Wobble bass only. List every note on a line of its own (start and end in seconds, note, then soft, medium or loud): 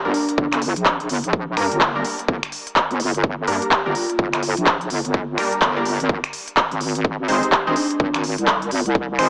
0.05 0.13 G1 medium
0.38 0.50 G1 medium
0.53 0.74 G1 loud
0.76 1.08 A#1 loud
1.09 1.22 G1 loud
1.24 1.56 A#1 medium
1.57 1.69 G2 loud
1.72 2.03 G1 medium
2.28 2.41 G1 loud
2.91 3.36 G1 medium
3.38 3.46 G1 loud
3.47 3.60 G2 loud
3.86 3.94 G1 medium
4.19 4.31 G1 medium
4.34 4.55 G1 medium
4.57 4.89 A#1 loud
4.90 5.03 G1 medium
5.05 5.37 G1 medium
5.62 5.98 G1 medium
6.00 6.08 G#1 loud
6.09 6.22 G#1 medium
6.72 7.17 G#1 loud
7.19 7.27 G#1 loud
7.28 7.41 G#1 loud
7.67 7.75 G#1 medium
8.00 8.12 G#1 medium
8.15 8.36 G#1 medium
8.38 8.70 C2 medium
8.71 8.84 G#1 loud
8.86 9.17 C2 medium
9.19 9.29 G#1 loud